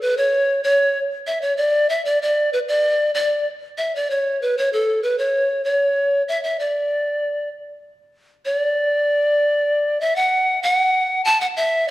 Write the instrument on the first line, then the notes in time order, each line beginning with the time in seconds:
pan flute
0.01 B4
0.17 C#5
0.64 C#5
1.27 E5
1.42 C#5
1.57 D5
1.89 E5
2.05 D5
2.22 D5
2.53 B4
2.68 D5
3.15 D5
3.78 E5
3.95 D5
4.10 C#5
4.42 B4
4.58 C#5
4.73 A4
5.03 B4
5.18 C#5
5.65 C#5
6.28 E5
6.44 E5
6.60 D5
8.45 D5
10.01 E5
10.16 F#5
10.63 F#5
11.25 A5
11.41 F#5
11.57 E5